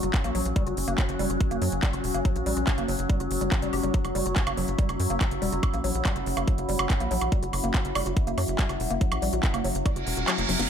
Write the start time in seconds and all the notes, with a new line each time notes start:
Already playing: F#3 C#4 F#4 C#5
0.03 F#1 F#4, closed hi-hat
0.14 kick, clap, closed hi-hat
0.24 A#1 A#3, closed hi-hat
0.35 A#1 F#3, open hi-hat
0.45 A#1, closed hi-hat
0.56 G3, kick, closed hi-hat
0.67 F#1 F#4, closed hi-hat
0.77 F#1, open hi-hat
0.88 F#1 A#3, closed hi-hat
0.98 F#3, kick, clap, closed hi-hat
1.09 F#1, closed hi-hat
1.19 F#1 G3, open hi-hat
1.30 F#1 F#4, closed hi-hat
1.41 kick, closed hi-hat
1.51 F#1 A#3, closed hi-hat
1.62 F#2 F#3, open hi-hat
1.72 F#1, closed hi-hat
1.83 G3, kick, clap, closed hi-hat
1.93 F#1 F#4, closed hi-hat
2.04 E1, open hi-hat
2.14 F#1 A#3, closed hi-hat
2.25 F#3, kick, closed hi-hat
2.36 A#1, closed hi-hat
2.46 A#1 G3, open hi-hat
2.57 A#1 F#4, closed hi-hat
2.67 kick, clap, closed hi-hat
2.78 F#1 A#3, closed hi-hat
2.88 F#1 F#3, open hi-hat
2.99 F#1, closed hi-hat
3.10 G3, kick, closed hi-hat
3.20 F#1 F#4, closed hi-hat
3.31 F#1, open hi-hat
3.41 F#1 G3, closed hi-hat
3.52 F#3, kick, clap, closed hi-hat
3.62 F#1 G3, closed hi-hat
3.73 F#1 G4, open hi-hat
3.83 F#1 G3, closed hi-hat
3.94 F#3 E4, kick, closed hi-hat
4.05 F#1, closed hi-hat, high woodblock
4.15 F#1 G3, open hi-hat
4.26 F#1 F#4, closed hi-hat
4.36 kick, clap, closed hi-hat
4.47 F#1 A#3, closed hi-hat, high woodblock
4.57 F#1 F#3, open hi-hat
4.68 F#1, closed hi-hat
4.78 G3, kick, closed hi-hat
4.89 F#1 F#4, closed hi-hat, high woodblock
5.00 F#2, open hi-hat
5.10 F#1 A#3, closed hi-hat
5.21 F#3, kick, clap, closed hi-hat, high woodblock
5.31 F#1, closed hi-hat
5.42 E1 G3, open hi-hat
5.52 F#1 F#4, closed hi-hat
5.63 kick, closed hi-hat, high woodblock
5.74 A#1 A#3, closed hi-hat
5.84 A#1 F#3, open hi-hat
5.95 A#1, closed hi-hat
6.05 G3, kick, clap, closed hi-hat, high woodblock
6.16 F#1 F#4, closed hi-hat
6.26 F#1, open hi-hat
6.37 F#1 A#3, closed hi-hat, high woodblock
6.48 F#3, kick, closed hi-hat
6.58 F#1, closed hi-hat
6.69 F#1 G3, open hi-hat
6.79 F#1 F#4, closed hi-hat, high woodblock
6.90 kick, clap, closed hi-hat
7.00 A#1 A#3, closed hi-hat
7.11 A#1 F#3, open hi-hat
7.21 A#1, closed hi-hat, high woodblock
7.32 G3, kick, closed hi-hat
7.43 F#1 F#4, closed hi-hat
7.53 F#1, open hi-hat, high woodblock
7.64 F#1 A#3, closed hi-hat
7.74 F#3, kick, clap, closed hi-hat
7.85 F#1, closed hi-hat
7.95 F#1 G3, open hi-hat, high woodblock
8.06 F#1 F#4, closed hi-hat
8.17 kick, closed hi-hat
8.27 F#1 A#3, closed hi-hat
8.38 F#2 F#3, open hi-hat, high woodblock
8.48 F#1, closed hi-hat
8.59 G3, kick, clap, closed hi-hat
8.69 F#1 F#4, closed hi-hat, high woodblock
8.80 E1, open hi-hat
8.90 F#1 A#3, closed hi-hat
9.01 F#3, kick, closed hi-hat
9.12 A#1, closed hi-hat, high woodblock
9.22 A#1 G3, open hi-hat
9.33 A#1 F#4, closed hi-hat
9.43 kick, clap, closed hi-hat
9.54 F#1 A#3, closed hi-hat, high woodblock
9.64 F#1 F#3, open hi-hat
9.75 F#1, closed hi-hat
9.86 G3, kick, closed hi-hat, reverse cymbal, high woodblock
9.96 F#1 F#4, closed hi-hat
10.07 E1, open hi-hat
10.17 E1 F#4, closed hi-hat
10.28 F#3, clap, closed hi-hat, high woodblock
10.38 F#1 A#3, closed hi-hat
10.49 F#1 F#3, snare, open hi-hat
10.59 F#1 A#3, snare, closed hi-hat